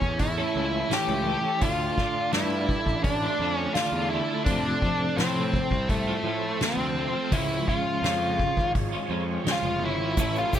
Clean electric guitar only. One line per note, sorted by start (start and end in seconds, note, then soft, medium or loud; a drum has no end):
0.38 0.56 A3 medium
0.38 0.56 C#4 medium
0.38 0.57 A4 medium
0.55 0.88 E3 medium
0.55 0.89 A3 medium
0.55 0.89 C#4 medium
0.55 0.91 A4 medium
0.88 1.43 A2 medium
0.88 1.24 E3 medium
0.88 1.10 A3 medium
0.88 1.08 C#4 medium
0.88 1.08 A4 medium
1.09 1.27 A3 medium
1.09 1.26 C#4 medium
1.09 1.28 A4 medium
1.25 1.59 E3 medium
1.25 1.47 A3 medium
1.25 1.44 C#4 medium
1.25 1.44 A4 medium
1.44 1.62 A3 medium
1.44 1.60 C#4 medium
1.44 1.63 A4 medium
1.62 1.96 D3 medium
1.62 1.98 A3 medium
1.62 1.98 D4 medium
1.62 1.99 F4 loud
1.97 2.31 D3 medium
1.97 2.32 A3 medium
1.97 2.33 D4 medium
1.97 2.34 F4 medium
2.32 2.69 D3 medium
2.32 2.52 A3 medium
2.32 2.50 D4 medium
2.32 2.50 F4 medium
2.50 2.69 A3 soft
2.50 2.69 D4 medium
2.50 2.71 F4 medium
2.70 muted clean electric guitar stroke soft
3.22 3.40 A3 medium
3.22 3.40 D4 medium
3.22 3.42 F4 medium
3.40 3.73 D3 medium
3.40 3.74 A3 medium
3.40 3.75 D4 medium
3.40 3.77 F4 medium
3.74 4.09 D3 medium
3.74 3.96 A3 medium
3.74 3.94 D4 medium
3.74 3.94 F4 loud
3.94 4.11 A3 medium
3.94 4.11 D4 medium
3.94 4.13 F4 medium
4.10 4.44 D3 medium
4.10 4.32 A3 medium
4.10 4.30 D4 medium
4.10 4.30 F4 medium
4.30 4.47 A3 medium
4.30 4.46 D4 medium
4.30 4.50 F4 medium
4.47 5.18 F2 loud
4.47 5.19 C3 medium
4.47 4.83 F3 loud
4.47 4.83 A3 loud
4.47 4.83 C4 medium
4.47 4.85 F4 loud
4.83 5.20 F3 medium
4.83 5.19 A3 medium
4.83 5.20 C4 medium
4.83 5.21 F4 medium
5.19 5.72 F2 medium
5.19 5.72 C3 medium
5.19 5.39 F3 medium
5.19 5.37 A3 medium
5.19 5.37 C4 medium
5.19 5.36 F4 loud
5.36 5.54 F3 medium
5.36 5.53 A3 medium
5.36 5.53 C4 medium
5.36 5.55 F4 medium
5.54 muted clean electric guitar stroke medium
6.07 6.23 F3 soft
6.07 6.25 A3 medium
6.07 6.25 C4 medium
6.07 6.26 F4 medium
6.24 6.60 F3 medium
6.24 6.61 A3 medium
6.24 6.61 C4 medium
6.24 6.62 F4 medium
6.61 7.14 F2 medium
6.61 7.14 C3 medium
6.61 6.79 F3 medium
6.61 6.79 A3 medium
6.61 6.78 C4 medium
6.61 6.76 F4 medium
6.78 6.95 F3 medium
6.78 6.96 A3 medium
6.78 6.96 C4 medium
6.78 6.98 F4 medium
6.96 7.14 F3 medium
6.96 7.14 A3 medium
6.96 7.13 C4 medium
6.96 7.12 F4 medium
7.13 7.30 F3 medium
7.13 7.30 A3 medium
7.13 7.30 C4 medium
7.13 7.29 F4 medium
7.30 8.02 C#3 medium
7.30 7.66 F3 medium
7.30 7.66 G#3 medium
7.30 7.68 C#4 loud
7.30 7.68 F4 loud
7.67 8.03 F3 medium
7.67 8.04 G#3 medium
7.67 8.04 C#4 medium
7.67 8.04 F4 medium
8.03 8.57 C#3 medium
8.03 8.37 F3 medium
8.03 8.21 G#3 medium
8.03 8.21 C#4 medium
8.03 8.18 F4 medium
8.19 8.37 G#3 medium
8.19 8.38 C#4 medium
8.19 8.37 F4 medium
8.38 muted clean electric guitar stroke soft
8.92 9.08 G#3 medium
8.92 9.09 C#4 medium
8.92 9.10 F4 medium
9.08 9.43 F3 medium
9.08 9.44 G#3 medium
9.08 9.45 C#4 medium
9.08 9.45 F4 medium
9.44 9.98 C#3 medium
9.44 9.81 F3 medium
9.44 9.65 G#3 medium
9.44 9.64 C#4 medium
9.44 9.62 F4 medium
9.64 9.82 G#3 medium
9.64 9.83 C#4 medium
9.64 9.83 F4 medium
9.82 10.16 F3 medium
9.82 10.02 G#3 medium
9.82 10.00 C#4 medium
9.82 9.98 F4 medium
9.99 10.17 G#3 medium
9.99 10.16 C#4 medium
9.99 10.15 F4 medium
10.17 10.60 A2 medium
10.17 10.51 E3 medium
10.17 10.53 A3 loud
10.17 10.53 C#4 loud
10.17 10.54 E4 loud
10.52 10.60 E3 medium
10.52 10.60 A3 medium
10.52 10.60 C#4 medium
10.52 10.60 E4 medium